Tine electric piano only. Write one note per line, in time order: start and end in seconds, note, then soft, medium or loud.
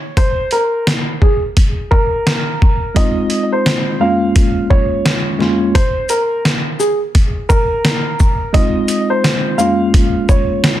2.94 3.99 G#3 medium
2.94 4.00 C4 medium
2.94 4.01 D#4 medium
2.94 4.02 F4 medium
3.99 5.30 F2 medium
3.99 5.30 G#3 medium
3.99 5.30 A#3 medium
3.99 5.31 C#4 medium
3.99 5.31 F4 medium
5.38 5.71 F2 medium
5.38 5.72 G#3 medium
5.38 5.72 A#3 medium
5.38 5.73 C#4 medium
5.38 5.73 F4 medium
8.53 9.57 G#3 medium
8.53 9.59 C4 medium
8.53 9.59 D#4 medium
8.53 9.60 F4 medium
9.57 10.80 F2 medium
9.57 10.80 G#3 medium
9.57 10.80 A#3 medium
9.57 10.80 C#4 medium
9.57 10.80 F4 medium